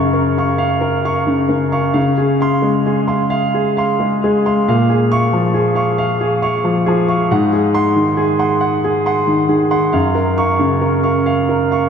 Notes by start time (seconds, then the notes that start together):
Already playing: F#2 C#3 A#4 F5 C#6
0.13 A#4
0.38 F5 C#6
0.58 F5
0.81 A#4
1.05 F5 C#6
1.27 C#3
1.49 C#3 A#4
1.72 F5 C#6
1.94 C#3 F5
2.18 G#4
2.41 F5 C6
2.62 G#3
2.86 G#4
3.08 F5 C6
3.30 F5
3.54 G#4
3.77 F5 C6
4.00 G#3
4.24 G#3 G#4
4.46 F5 C6
4.68 A#2 F5
4.90 G#4
5.12 F5 C#6
5.33 F3
5.54 G#4
5.75 F5 C#6
5.98 F5
6.21 G#4
6.42 F5 C#6
6.64 F3
6.86 F3 G#4
7.08 F5 C#6
7.31 G#2 F#5
7.53 G#4
7.74 F#5 C6
7.96 D#3
8.17 G#4
8.39 F#5 C6
8.61 F#5
8.84 G#4
9.06 F#5 C6
9.27 D#3
9.49 D#3 G#4
9.71 F#5 C6
9.93 F#2 F5
10.15 A#4
10.38 F5 C#6
10.59 C#3
10.81 A#4
11.03 F5 C#6
11.26 F5
11.49 A#4
11.71 F5 C#6